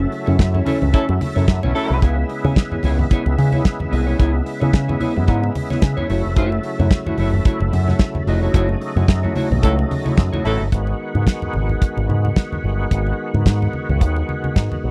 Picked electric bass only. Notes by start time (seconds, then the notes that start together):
0.27 F#2
0.39 F#2
0.82 C#2
1.09 F#2
1.36 F#2
1.48 F#2
1.63 B1
1.90 C2
2.02 C#2
2.45 C#3
2.84 C#2
3.26 C#2
3.38 C#3
3.93 C2
4.20 C#2
4.62 C#3
4.74 C#3
5.17 F#2
5.28 G#2
5.82 C#3
6.10 F#1
6.25 F1
6.37 F#1
6.79 F#2
7.18 F#1
7.60 F#1
7.73 F#2
8.27 F1
8.54 F#1
8.96 F#2
9.08 F#2
9.51 B1
9.63 C#2
10.18 F#2
10.45 A1
10.60 G1
10.72 G#1
11.15 G#2
11.55 G#1
11.97 G#1
12.09 G#2
12.64 G1
12.91 G#1
13.34 G#2
13.46 G#2
13.89 C#2
14.01 D#2
14.56 G#2
14.84 B1